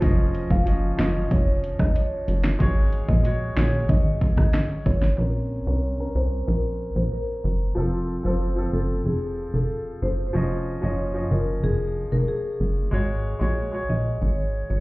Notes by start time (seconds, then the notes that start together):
0.01 F1 F3 C#4 D#5, kick, closed hi-hat
0.35 closed hi-hat
0.51 F#1 F5, kick
0.65 F3 C#4 D#5, closed hi-hat
0.97 F#1 F3 C#4 D#5, finger snap, snare, closed hi-hat
1.31 F1 C#5, kick, closed hi-hat
1.64 closed hi-hat
1.79 F1 D#5, kick, cross-stick
1.96 C#5, closed hi-hat
2.28 F#1, closed hi-hat
2.44 finger snap, snare
2.59 G#1 G#3 F#4 C#5, kick, closed hi-hat
2.93 closed hi-hat
3.08 A#1 D#5, kick
3.23 G#3 F#4 C#5, closed hi-hat
3.56 A#1 G#3 F#4 C#5, finger snap, snare, closed hi-hat
3.89 G#1 D#5, kick, closed hi-hat
4.21 kick, closed hi-hat
4.37 G#1 D#5, kick, cross-stick
4.54 finger snap, snare, closed hi-hat
4.86 G#1 C#5, kick, closed hi-hat
5.02 snare
5.17 A#1 C4 C#4 A#4
5.65 C2 C4 C#4 A#4 C#5
5.98 C4 C#4 A#4
6.15 C2 C5
6.47 A#1 A#4
6.96 A#1 C5
7.12 A#4
7.44 F#1
7.75 F1 F3 C4 A4
8.23 F#1 F3 C4 A4 C5
8.55 F3 C4 A4
8.73 F#1 A4
9.05 F1 G#4
9.54 F1 A4
10.02 F#1 C5
10.33 F1 F3 C#4 D#5
10.81 F#1 F3 C#4 C#5 D#5
11.14 F3 C#4 D#5
11.31 F#1 A#4
11.64 F1 G#4
12.12 F1 A#4
12.28 G#4
12.60 F#1
12.91 G#1 G#3 F#4 C#5
13.39 A#1 G#3 F#4 C#5
13.71 G#3 F#4 C#5
13.89 A#1 D#5
14.22 G#1 C#5
14.70 G#1 C#5